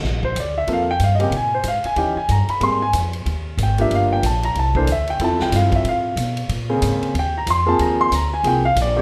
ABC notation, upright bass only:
X:1
M:4/4
L:1/8
Q:"Swing" 1/4=186
K:Gphr
V:1 name="Upright bass" clef=bass
B,,,2 D,,2 F,,2 G,,2 | B,,2 A,, z E,, z G,, z | A,,2 F,,2 E,,2 A,,,2 | G,,,2 B,,,2 C,,2 D,,2 |
(3F,, =E,, C,, G,,2 =A,,2 =B,,2 | B,,2 A,, z E,,2 F,,2 | E,,2 D,,2 C,,2 B,,,2 |]